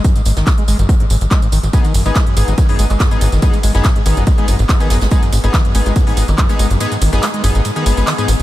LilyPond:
<<
  \new Staff \with { instrumentName = "Analog polysynth" } { \time 4/4 \key gis \minor \tempo 4 = 142 r1 | <b dis' gis'>16 r8 <b dis' gis'>16 r8 <b dis' gis'>8 r16 <b dis' gis'>8 r8 <b dis' gis'>8 r16 | <b dis' gis'>16 r8 <b dis' gis'>16 r8 <b dis' gis'>8 r16 <b dis' gis'>8 r8 <b dis' gis'>8 r16 | <b dis' gis'>16 r8 <b dis' gis'>16 r8 <b dis' gis'>8 r16 <b dis' gis'>8 r8 <b dis' gis'>8 r16 |
<b dis' gis'>16 r8 <b dis' gis'>16 r8 <b dis' gis'>8 r16 <b dis' gis'>16 <b dis' gis'>16 <b dis' gis'>16 r16 <b dis' gis'>16 r8 | }
  \new Staff \with { instrumentName = "Acid bass" } { \clef bass \time 4/4 \key gis \minor fis,16 gis,16 gis,16 dis16 r16 gis16 gis16 fis,16 gis,16 gis,16 gis,16 r16 gis16 gis,16 dis16 gis,,16 | gis,16 dis16 fis,16 gis16 gis16 fis,16 gis,16 gis,16 dis16 fis,16 gis16 gis16 fis,16 gis,16 gis,16 dis16 | fis,16 gis16 gis16 fis,16 gis,16 gis,16 dis16 fis,16 gis16 gis16 fis,16 gis,16 gis,16 dis16 fis,16 gis16 | gis16 fis,16 gis,16 gis,16 dis16 fis,16 gis16 gis16 fis,16 gis,16 gis,16 dis16 fis,16 gis16 gis16 fis,16 |
gis,16 gis,16 dis16 fis,16 gis16 gis16 fis,16 gis,16 gis,16 dis16 gis16 gis16 dis16 gis,16 gis,16 b,16 | }
  \new Staff \with { instrumentName = "Analog synth bass" } { \clef bass \time 4/4 \key gis \minor r8 gis,,16 gis,,16 r8 gis,,16 gis,,16 r8 gis,,16 gis,,16 r8 gis,,16 gis,,16 | r8 gis,,16 gis,,16 r8 gis,,16 gis,,16 r8 gis,,16 gis,,16 r8 gis,,16 gis,,16 | r8 gis,,16 gis,,16 r8 gis,,16 gis,,16 r8 gis,,16 gis,,16 r8 gis,,16 gis,,16 | r8 gis,,16 gis,,16 r8 gis,,16 gis,,16 r8 gis,,16 gis,,16 r8 gis,,16 gis,,16 |
r8 gis,,16 gis,,16 r8 gis,,16 gis,,16 r8 gis,,16 gis,,16 r8 gis,,16 gis,,16 | }
  \new DrumStaff \with { instrumentName = "Drums" } \drummode { \time 4/4 <hh bd tamb>16 <hh tamb>16 <hh hho tamb>16 <hh sn tamb>16 <hc hh bd sn tamb>16 hh16 <hh hho tamb>16 <hh tamb>16 <hh bd tamb>16 hh16 <hho tamb>16 <hh tamb>16 <hc hh bd sn tamb>16 <hh tamb>16 <hh hho tamb>16 <hh tamb>16 | <hh bd cymr tamb>16 <hh tamb>16 <hh hho cymr tamb>16 <hh tamb>16 <hc hh bd cymr sn tamb>16 hh16 <hh hho cymr tamb>16 <hh tamb>16 <hh bd cymr tamb>16 <hh hho>16 <hh hho cymr tamb>16 <hc hh tamb>16 <hc hh bd cymr sn tamb>16 <hh tamb>16 <hh hho cymr tamb>16 <hh sn tamb>16 | <hh bd cymr tamb>16 <hh tamb>16 <hh hho cymr tamb>16 <hh sn tamb>16 <hc hh bd cymr sn tamb>16 hh16 <hh hho cymr tamb>16 <hh tamb>16 <hh bd cymr tamb>16 hh16 <hho cymr tamb>16 <hh tamb>16 <hc hh bd cymr sn tamb>16 <hh tamb>16 <hh hho cymr sn tamb>16 <hh sn tamb>16 | <hh bd cymr tamb>16 <hh tamb>16 <hh hho cymr tamb>16 <hh tamb>16 <hc hh bd cymr sn tamb>16 hh16 <hh hho cymr tamb>16 <hh tamb>16 <hh bd cymr tamb>16 <hh hho>16 <hh hho cymr tamb>16 <hc hh tamb>16 <hc hh bd cymr tamb>16 <hh tamb>16 <hho cymr tamb>16 <hh tamb>16 |
<hh cymr tamb>16 <hh tamb>16 <hh hho cymr tamb>16 <hh sn tamb>16 <hc hh cymr sn tamb>16 hh16 <hh hho cymr tamb>16 <hh tamb>16 <hh cymr tamb>16 hh16 <hho cymr tamb>16 <hh tamb>16 <hc hh hho cymr sn tamb>16 <hh tamb>16 <hh hho cymr tamb>16 <hh tamb>16 | }
>>